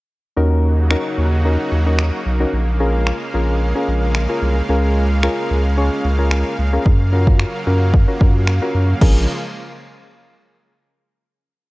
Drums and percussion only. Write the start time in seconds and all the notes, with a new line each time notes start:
0.91 finger snap
1.99 finger snap
3.07 finger snap
4.15 finger snap
5.23 finger snap
6.31 finger snap
6.85 kick
7.27 kick
7.39 finger snap
7.93 kick
8.21 kick
8.47 finger snap
9.02 kick, crash